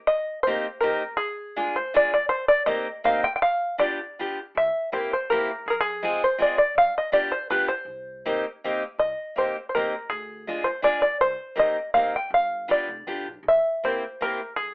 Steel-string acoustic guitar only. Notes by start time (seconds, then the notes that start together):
0.47 A#3 C4 D#4 G4
0.82 A#3 C4 D#4 G4
1.56 G#3 D4 F4 G#4
1.94 G#3 D4 F4 G#4
2.66 A#3 C4 D#4 G4
3.04 A#3 C4 D#4 G4
3.78 B3 D4 F4 G4
4.19 B3 D4 F4 G4
4.92 A#3 C4 E4 G4
5.31 A#3 C4 E4 G4
6.03 G#3 C4 F4 G#4
6.38 G#3 C4 F4 G#4
7.12 B3 D4 F4 G4
7.50 B3 D4 F4 G4
8.25 A#3 C4 D#4 G4
8.64 A#3 C4 D#4 G4
9.36 A#3 C4 D#4 G4
9.75 A#3 C4 D#4 G4
10.47 G#3 D4 F4 G#4
10.82 G#3 D4 F4 G#4
11.56 A#3 C4 D#4 G4
11.94 A#3 C4 D#4 G4
12.68 B3 D4 F4 G4
13.07 B3 D4 F4 G4
13.84 A#3 C4 E4 G4
14.21 A#3 C4 E4 G4